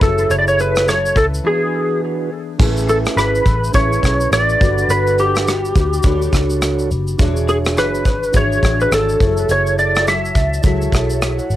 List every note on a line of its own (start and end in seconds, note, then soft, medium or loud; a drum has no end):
0.01 0.24 F#1 loud
0.01 0.85 F#3 soft
0.01 0.86 C#4 soft
0.01 0.94 E4 medium
0.01 0.88 E4 medium
0.01 0.94 G#4 medium
0.01 0.87 A4 medium
0.01 0.95 A4 medium
0.01 0.32 A4 medium
0.01 0.10 B4 medium
0.01 kick loud
0.01 closed hi-hat soft
0.01 shaker soft
0.09 0.98 C#5 medium
0.18 shaker medium
0.30 1.12 F#1 loud
0.30 0.34 C#5 loud
0.30 closed hi-hat medium
0.30 shaker medium
0.38 0.47 D5 medium
0.48 0.59 C#5 medium
0.48 shaker medium
0.59 0.86 B4 loud
0.59 closed hi-hat medium
0.59 shaker medium
0.76 cross-stick loud
0.76 shaker soft
0.87 1.16 F#3 medium
0.87 1.16 C#4 medium
0.87 1.15 E4 medium
0.87 1.14 A4 medium
0.87 1.17 C#5 medium
0.87 cross-stick loud
0.87 closed hi-hat medium
0.87 shaker medium
1.06 shaker medium
1.15 1.39 C#2 medium
1.15 1.44 C#4 soft
1.15 1.45 E4 soft
1.15 1.44 A4 medium
1.15 1.25 A4 medium
1.15 kick medium
1.15 closed hi-hat soft
1.15 shaker soft
1.34 shaker soft
1.43 2.29 E3 medium
1.43 2.58 E3 medium
1.43 2.59 B3 medium
1.43 2.30 D4 medium
1.43 2.60 D4 medium
1.43 2.30 F#4 medium
1.43 2.31 G#4 medium
1.43 1.99 G#4 medium
1.43 2.60 G#4 medium
1.43 2.31 B4 medium
2.58 3.06 A1 loud
2.58 3.16 A3 medium
2.58 3.44 C#4 medium
2.58 3.17 C#4 medium
2.58 3.45 E4 medium
2.58 3.17 E4 medium
2.58 3.45 G#4 medium
2.58 3.17 G#4 loud
2.58 3.46 B4 loud
2.58 kick loud
2.58 crash loud
2.77 shaker medium
2.89 2.97 A4 medium
2.89 closed hi-hat medium
2.89 shaker medium
3.05 cross-stick loud
3.05 shaker soft
3.16 3.40 G#1 medium
3.16 3.72 A3 medium
3.16 3.73 C#4 medium
3.16 3.74 E4 medium
3.16 3.74 G#4 medium
3.16 3.75 B4 medium
3.16 cross-stick medium
3.16 closed hi-hat medium
3.16 shaker medium
3.35 shaker soft
3.46 3.69 A1 medium
3.46 kick medium
3.46 closed hi-hat soft
3.46 shaker soft
3.64 shaker soft
3.73 3.97 A1 loud
3.73 4.60 A3 medium
3.73 4.59 C#4 medium
3.73 4.61 C#4 medium
3.73 4.59 E4 medium
3.73 4.61 E4 medium
3.73 4.60 G#4 medium
3.73 4.60 B4 medium
3.73 4.33 C#5 loud
3.73 kick medium
3.73 closed hi-hat medium
3.73 shaker medium
3.93 shaker soft
4.03 4.26 B1 medium
4.03 kick medium
4.03 cross-stick medium
4.03 closed hi-hat medium
4.03 shaker medium
4.20 shaker medium
4.31 4.55 A1 medium
4.31 4.92 D5 loud
4.31 cross-stick loud
4.31 closed hi-hat medium
4.31 shaker medium
4.49 shaker soft
4.59 4.84 G1 medium
4.59 5.45 G3 soft
4.59 5.53 D4 medium
4.59 5.47 D4 medium
4.59 5.48 F#4 medium
4.59 5.53 A4 medium
4.59 5.48 B4 medium
4.59 5.54 B4 medium
4.59 5.53 F#5 medium
4.59 kick loud
4.59 closed hi-hat soft
4.59 shaker soft
4.78 shaker medium
4.89 5.71 G1 loud
4.89 5.19 B4 loud
4.89 closed hi-hat medium
4.89 shaker medium
5.07 shaker medium
5.18 6.30 G4 medium
5.18 closed hi-hat medium
5.18 shaker medium
5.35 cross-stick loud
5.35 shaker soft
5.46 5.75 G3 medium
5.46 5.76 D4 medium
5.46 5.75 F#4 medium
5.46 5.74 B4 medium
5.46 cross-stick loud
5.46 closed hi-hat medium
5.46 shaker medium
5.65 shaker soft
5.75 5.99 D2 loud
5.75 6.03 D4 soft
5.75 6.04 F#4 soft
5.75 6.04 B4 medium
5.75 kick medium
5.75 closed hi-hat soft
5.75 shaker soft
5.93 shaker medium
6.03 6.27 D2 medium
6.03 7.18 G3 medium
6.03 6.90 D4 medium
6.03 7.20 D4 medium
6.03 6.90 F#4 medium
6.03 7.20 F#4 medium
6.03 6.91 A4 medium
6.03 7.21 B4 medium
6.03 6.91 C#5 loud
6.03 kick loud
6.03 closed hi-hat medium
6.03 shaker medium
6.22 shaker soft
6.33 6.92 C#2 medium
6.33 kick medium
6.33 cross-stick medium
6.33 closed hi-hat medium
6.33 shaker medium
6.50 shaker medium
6.62 cross-stick loud
6.62 closed hi-hat medium
6.62 shaker medium
6.79 shaker soft
6.91 7.14 F#1 medium
6.91 closed hi-hat soft
6.91 shaker soft
7.07 shaker medium
7.18 7.77 E1 loud
7.18 8.10 E3 medium
7.18 8.04 D4 medium
7.18 8.06 D4 medium
7.18 8.04 F#4 medium
7.18 8.05 G#4 medium
7.18 8.05 G#4 loud
7.18 8.05 C#5 loud
7.18 8.05 C#5 medium
7.18 kick loud
7.18 closed hi-hat medium
7.18 shaker medium
7.36 shaker medium
7.48 7.57 G#4 medium
7.48 closed hi-hat medium
7.48 shaker medium
7.65 cross-stick loud
7.65 shaker soft
7.77 8.05 F#1 medium
7.77 8.37 B4 medium
7.77 cross-stick loud
7.77 closed hi-hat medium
7.77 shaker medium
7.95 shaker medium
8.05 8.28 G#1 medium
8.05 8.34 D4 soft
8.05 8.34 G#4 soft
8.05 8.34 C#5 medium
8.05 kick medium
8.05 closed hi-hat soft
8.05 shaker medium
8.23 shaker medium
8.32 8.57 G#1 medium
8.32 9.22 E3 medium
8.32 9.19 D4 medium
8.32 9.21 D4 medium
8.32 9.19 F#4 medium
8.32 9.19 G#4 medium
8.32 9.21 G#4 medium
8.32 9.20 C#5 medium
8.32 kick loud
8.32 closed hi-hat medium
8.32 shaker medium
8.37 8.83 C#5 medium
8.37 9.21 C#5 medium
8.52 shaker soft
8.63 8.86 A1 medium
8.63 kick medium
8.63 cross-stick medium
8.63 closed hi-hat medium
8.63 shaker medium
8.80 8.92 B4 medium
8.80 shaker medium
8.92 9.15 G#1 loud
8.92 9.52 A4 loud
8.92 cross-stick loud
8.92 closed hi-hat medium
8.92 shaker medium
9.09 shaker soft
9.20 9.43 F#1 loud
9.20 10.06 F#3 medium
9.20 10.13 E4 medium
9.20 10.08 E4 medium
9.20 10.14 G#4 medium
9.20 10.14 A4 medium
9.20 10.08 A4 medium
9.20 10.09 C#5 medium
9.20 10.14 C#5 medium
9.20 kick loud
9.20 closed hi-hat soft
9.20 shaker soft
9.37 shaker medium
9.49 10.31 F#1 loud
9.49 9.78 C#5 loud
9.49 closed hi-hat medium
9.49 shaker medium
9.67 shaker medium
9.79 10.05 D5 medium
9.79 closed hi-hat medium
9.79 shaker medium
9.95 cross-stick loud
9.95 shaker soft
10.07 10.63 F#3 medium
10.07 10.65 E4 medium
10.07 10.67 A4 medium
10.07 10.67 C#5 medium
10.07 10.61 E5 loud
10.07 cross-stick loud
10.07 closed hi-hat medium
10.07 shaker medium
10.25 shaker medium
10.35 10.58 C#2 medium
10.35 kick medium
10.35 closed hi-hat soft
10.35 shaker medium
10.53 shaker medium
10.62 10.87 C#2 loud
10.62 11.56 F#3 medium
10.62 11.49 E4 medium
10.62 11.56 E4 medium
10.62 11.21 G#4 medium
10.62 11.22 A4 medium
10.62 11.20 C#5 medium
10.62 kick medium
10.62 closed hi-hat medium
10.62 shaker medium
10.67 11.56 A4 medium
10.67 11.56 C#5 medium
10.82 shaker soft
10.92 11.39 B1 medium
10.92 kick medium
10.92 cross-stick medium
10.92 closed hi-hat medium
10.92 shaker medium
11.10 shaker medium
11.22 11.38 G#4 medium
11.22 11.38 C#5 medium
11.22 cross-stick loud
11.22 closed hi-hat medium
11.22 shaker medium
11.38 11.56 C#5 medium
11.38 11.56 F#5 medium
11.38 shaker soft
11.50 11.56 G#1 medium
11.50 closed hi-hat soft
11.50 shaker soft